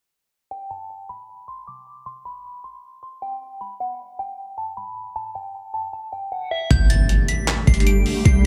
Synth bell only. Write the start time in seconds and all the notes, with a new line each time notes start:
0.51 G5
0.71 A5
1.09 B5
1.48 C6
1.67 D6
2.06 C6
2.25 B5
2.64 C6
3.03 C6
3.22 G5
3.61 B5
3.80 F#5
4.19 G5
4.58 A5
4.77 B5
5.16 A5
5.35 G5
5.74 A5
5.93 A5
6.12 G5
6.32 F#5
6.51 E5
6.71 G6
6.90 A6
7.29 B6
7.67 C7
7.87 D7
8.25 C7